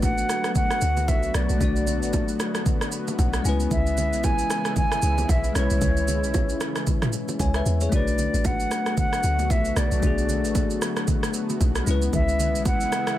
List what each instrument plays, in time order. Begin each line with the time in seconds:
Already playing: log drum bass A1, analog synth pad D3 F#3 A3 B3 F#4, tine electric piano A3 D4 F#4 B4
0.02 flute F#5, kick, high bongo, low bongo, shaker
0.18 shaker
0.29 cross-stick, high bongo, shaker
0.44 cross-stick, shaker
0.55 flute F#5, kick, low conga, shaker
0.71 cross-stick, shaker
0.81 log drum bass D2, shaker
0.97 low bongo, shaker
1.08 log drum bass B1, flute E5, kick, high bongo, shaker
1.23 shaker
1.34 log drum bass B1, flute D5, cross-stick, shaker
1.49 log drum bass B1, shaker
1.58 log drum bass B1, tine electric piano A3 D4, kick, low conga, shaker
1.62 tine electric piano F#4 D5
1.76 shaker
1.87 low bongo, low conga, shaker
2.02 log drum bass A1, shaker
2.13 kick, high bongo, low bongo, shaker
2.28 shaker
2.40 cross-stick, high bongo, shaker
2.55 cross-stick, shaker
2.66 kick, low conga, shaker
2.81 cross-stick, shaker
2.92 shaker
3.08 low bongo, shaker
3.19 log drum bass B1, tine electric piano F#5, kick, high bongo, shaker
3.33 cross-stick, shaker
3.42 log drum bass C#2, analog synth pad C#3 E3 G#3 E4, tine electric piano G#3 C#4 G#5, shaker
3.47 tine electric piano E4 B4
3.60 shaker
3.71 log drum bass C#2, flute E5, kick, low conga, shaker
3.87 shaker
3.98 low bongo, low conga, shaker
4.13 log drum bass B1, shaker
4.24 flute G#5, kick, high bongo, low bongo, shaker
4.39 shaker
4.50 cross-stick, high bongo, shaker
4.65 cross-stick, shaker
4.76 flute G#5, kick, low conga, shaker
4.92 cross-stick, shaker
5.02 log drum bass C#2, shaker
5.18 low bongo, shaker
5.29 log drum bass B1, flute E5, kick, high bongo, shaker
5.44 shaker
5.53 log drum bass B1, tine electric piano G#3 C#4, analog synth pad C#4, flute C#5, cross-stick, shaker
5.57 tine electric piano E4 B4
5.70 log drum bass B1, shaker
5.82 log drum bass C#2, kick, low conga, shaker
5.97 shaker
6.08 low bongo, low conga, shaker
6.23 log drum bass B1, shaker
6.34 kick, high bongo, low bongo, shaker
6.49 shaker
6.61 cross-stick, high bongo, shaker
6.76 cross-stick, shaker
6.87 kick, low conga, shaker
7.02 cross-stick, mid tom, shaker
7.13 shaker
7.28 low bongo, shaker
7.39 log drum bass C#2, tine electric piano C#5 G#5, kick, high bongo, shaker
7.54 tine electric piano B4 E5, cross-stick, shaker
7.66 log drum bass E2, shaker
7.81 tine electric piano G#4 C#5, high bongo, shaker
7.89 log drum bass B1, analog synth pad D3 F#3 A3 B3 F#4, tine electric piano A3 D4, flute D5, kick, low conga, shaker
7.94 tine electric piano F#4 B4
8.08 shaker
8.19 low bongo, low conga, shaker
8.34 log drum bass A1, shaker
8.45 flute F#5, kick, high bongo, low bongo, shaker
8.60 shaker
8.71 cross-stick, high bongo, shaker
8.86 cross-stick, shaker
8.97 flute F#5, kick, low conga, shaker
9.13 cross-stick, shaker
9.23 log drum bass D2, shaker
9.39 low bongo, shaker
9.50 log drum bass B1, flute E5, kick, high bongo, shaker
9.65 shaker
9.76 log drum bass B1, flute D5, cross-stick, shaker
9.91 log drum bass B1, shaker
10.00 log drum bass B1, tine electric piano A3 D4, kick, low conga, shaker
10.04 tine electric piano F#4 G#4
10.18 shaker
10.29 low bongo, low conga, shaker
10.44 log drum bass A1, shaker
10.55 kick, high bongo, low bongo, shaker
10.70 shaker
10.82 cross-stick, high bongo, shaker
10.97 cross-stick, shaker
11.08 kick, low conga, shaker
11.23 cross-stick, shaker
11.34 shaker
11.50 low bongo, shaker
11.61 log drum bass B1, kick, high bongo, shaker
11.75 cross-stick, shaker
11.84 log drum bass C#2, analog synth pad C#3 E3 G#3 E4, tine electric piano G#3 C#4, shaker
11.88 tine electric piano E4 B4
12.02 shaker
12.13 log drum bass C#2, flute E5, kick, low conga, shaker
12.29 shaker
12.40 low bongo, low conga, shaker
12.55 log drum bass B1, shaker
12.65 flute F#5, kick, high bongo, low bongo, shaker
12.81 shaker
12.92 cross-stick, high bongo, shaker
13.07 cross-stick, shaker